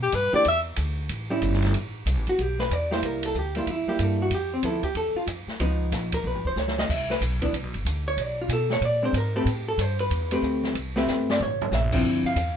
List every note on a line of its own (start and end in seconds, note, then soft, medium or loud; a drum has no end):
0.00 0.12 B2 medium
0.00 0.17 G4 medium
0.12 0.32 G2 medium
0.12 0.35 B4 medium
0.12 hi-hat pedal medium
0.12 ride medium
0.33 0.44 E3 medium
0.33 0.45 A#3 medium
0.33 0.45 D4 medium
0.33 0.45 G4 medium
0.33 0.46 D5 loud
0.33 muted upright bass stroke soft
0.45 0.77 E2 medium
0.45 0.60 E5 medium
0.45 ride medium
0.76 1.09 D2 medium
0.76 hi-hat pedal medium
0.76 ride medium
1.09 1.41 A1 medium
1.09 ride medium
1.30 1.72 G3 medium
1.30 1.73 C#4 medium
1.30 1.73 E4 medium
1.42 1.73 G1 loud
1.42 hi-hat pedal medium
1.42 ride medium
1.53 snare soft
1.62 snare medium
1.62 ride medium
1.74 2.05 A1 medium
1.74 ride medium
2.06 2.17 C2 medium
2.06 hi-hat pedal medium
2.06 ride medium
2.17 2.27 A1 medium
2.27 2.38 G1 medium
2.27 2.41 F#4 medium
2.27 ride medium
2.39 2.70 B1 medium
2.39 2.59 G4 medium
2.39 ride medium
2.59 2.73 B4 medium
2.59 snare medium
2.71 3.02 E2 medium
2.71 2.92 D5 medium
2.71 hi-hat pedal medium
2.71 ride medium
2.91 3.33 G3 medium
2.91 3.33 A#3 medium
2.91 3.34 E4 medium
2.91 3.04 C5 medium
2.91 snare medium
3.02 3.34 C2 medium
3.02 3.24 A#4 medium
3.02 ride medium
3.23 3.36 A4 medium
3.23 ride medium
3.35 3.66 D2 medium
3.35 hi-hat pedal medium
3.39 3.57 G4 medium
3.55 3.67 G3 medium
3.55 3.67 A#3 medium
3.55 3.67 E4 medium
3.55 3.69 F4 medium
3.55 ride soft
3.67 3.86 E2 medium
3.67 ride medium
3.71 3.88 E4 medium
3.87 4.30 G3 medium
3.87 4.30 A#3 medium
3.87 4.30 E4 medium
3.87 4.03 G4 loud
3.87 muted upright bass stroke soft
3.99 4.30 G2 medium
3.99 4.21 A4 medium
3.99 hi-hat pedal medium
3.99 ride medium
4.22 4.33 F#4 medium
4.30 4.62 F2 medium
4.30 ride medium
4.35 4.53 G4 medium
4.54 4.64 C4 medium
4.63 4.82 D2 medium
4.63 4.82 F3 medium
4.63 4.82 B3 medium
4.63 4.83 E4 medium
4.63 4.83 A4 medium
4.63 hi-hat pedal medium
4.63 ride medium
4.83 4.96 G4 medium
4.83 muted upright bass stroke soft
4.83 kick medium
4.83 ride soft
4.95 5.14 E2 medium
4.95 5.16 A4 medium
4.95 ride medium
5.15 5.24 F4 loud
5.15 muted upright bass stroke soft
5.27 5.46 F2 medium
5.27 hi-hat pedal medium
5.27 ride medium
5.47 muted upright bass stroke soft
5.47 snare soft
5.60 5.91 C#2 medium
5.60 6.50 F3 medium
5.60 6.50 B3 medium
5.60 6.50 D#4 medium
5.60 ride medium
5.92 6.23 A#1 medium
5.92 snare soft
5.92 hi-hat pedal medium
5.92 ride medium
6.12 6.25 A#4 medium
6.12 kick medium
6.12 ride medium
6.24 6.35 B1 medium
6.24 6.46 B4 medium
6.35 6.44 G#1 medium
6.45 6.56 F1 medium
6.45 6.60 C5 medium
6.45 kick medium
6.56 6.88 C#2 medium
6.56 6.78 C#5 medium
6.56 snare medium
6.56 hi-hat pedal medium
6.68 snare medium
6.78 6.92 D#5 medium
6.78 snare medium
6.89 7.20 C2 medium
6.89 7.10 E5 medium
6.89 kick medium
6.89 crash medium
7.10 7.18 B4 loud
7.10 snare medium
7.21 7.52 B1 medium
7.21 hi-hat pedal medium
7.21 ride medium
7.42 7.53 E3 medium
7.42 7.53 B3 medium
7.42 7.53 D4 medium
7.42 kick medium
7.42 ride medium
7.52 7.63 C2 medium
7.52 ride medium
7.63 7.74 B1 medium
7.74 7.84 G1 medium
7.74 ride soft
7.85 8.16 D2 medium
7.85 hi-hat pedal medium
7.85 ride medium
8.08 8.21 C#5 loud
8.17 8.48 B1 medium
8.17 ride medium
8.21 8.39 D5 loud
8.41 8.52 F4 medium
8.49 8.81 B2 medium
8.49 hi-hat pedal medium
8.49 ride medium
8.53 8.71 A4 medium
8.70 8.83 C#5 loud
8.70 snare medium
8.81 9.13 A#2 medium
8.81 ride medium
8.85 9.03 D5 loud
9.02 9.13 G#3 medium
9.02 9.13 C4 medium
9.02 9.14 D4 medium
9.02 9.16 C5 loud
9.13 9.45 G#2 medium
9.13 hi-hat pedal medium
9.13 ride medium
9.17 9.36 A#4 medium
9.36 9.46 A3 medium
9.36 9.46 C4 medium
9.36 9.46 G4 medium
9.36 9.47 A4 medium
9.36 9.49 B4 medium
9.45 9.77 A2 medium
9.45 9.67 G4 medium
9.45 ride medium
9.68 9.81 A4 medium
9.78 10.10 G2 medium
9.78 10.00 C5 loud
9.78 hi-hat pedal medium
9.78 ride medium
9.99 10.32 B4 loud
9.99 ride medium
10.10 10.42 E2 medium
10.10 ride medium
10.31 10.73 A3 medium
10.31 10.74 C4 medium
10.31 10.74 G4 medium
10.31 10.74 B4 medium
10.31 ride medium
10.42 10.74 D2 medium
10.42 hi-hat pedal medium
10.63 snare medium
10.75 11.06 C2 medium
10.75 ride medium
10.96 11.38 A3 medium
10.96 11.38 C4 medium
10.96 11.38 G4 medium
10.96 11.38 B4 medium
10.96 11.27 E5 medium
10.96 snare medium
11.08 11.39 G1 medium
11.08 snare medium
11.08 hi-hat pedal medium
11.30 11.41 D5 medium
11.30 snare medium
11.40 11.71 A1 medium
11.40 11.71 C#5 medium
11.40 mid tom medium
11.62 floor tom medium
11.72 12.03 A#1 loud
11.72 12.22 E5 medium
11.72 snare medium
11.72 hi-hat pedal medium
11.92 12.35 D3 medium
11.92 12.35 F3 medium
11.92 12.35 C4 medium
11.92 12.35 E4 medium
11.92 kick medium
11.92 crash medium
12.04 12.23 D2 medium
12.24 12.56 F5 loud
12.24 muted upright bass stroke soft
12.36 12.57 E2 medium
12.36 hi-hat pedal medium
12.36 ride medium